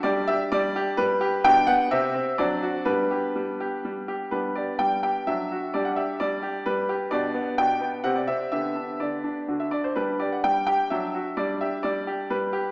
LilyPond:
<<
  \new Staff \with { instrumentName = "Grand piano" } { \time 3/4 \key g \major \tempo 4 = 128 << { d''8 e''8 d''4 b'4 | g''8 fis''8 e''4 d''4 | b'2~ b'8 r8 | b'8 d''8 g''8 g''8 e''4 |
d''16 fis''16 e''8 d''4 b'4 | d''4 g''4 fis''16 d''16 e''8 | e''4 d''4~ d''16 e''16 d''16 c''16 | b'8 d''16 fis''16 g''8 g''8 e''4 |
d''8 e''8 d''4 b'4 | } \\ { <d' g'>2. | <d' g'>4 <c' g'>4 <c' d'>4 | <b d'>2. | <b d'>2 d'4 |
<d' g'>2. | <d' g'>2 <c' g'>4 | <b g'>2 <d' fis'>4 | <d' g'>2 d'4 |
d'2. | } >> }
  \new Staff \with { instrumentName = "Grand piano" } { \time 3/4 \key g \major g8 g'8 g8 g'8 g8 g'8 | b,8 b8 c8 c'8 fis8 fis'8 | g8 g'8 g8 g'8 g8 g'8 | g8 g'8 g8 g'8 fis8 fis'8 |
g8 g'8 g8 g'8 g8 g'8 | b,8 b8 b,8 b8 c8 c'8 | d8 d'8 d8 d'8 d8 d'8 | g8 g'8 g8 g'8 fis8 fis'8 |
g8 g'8 g8 g'8 g8 g'8 | }
>>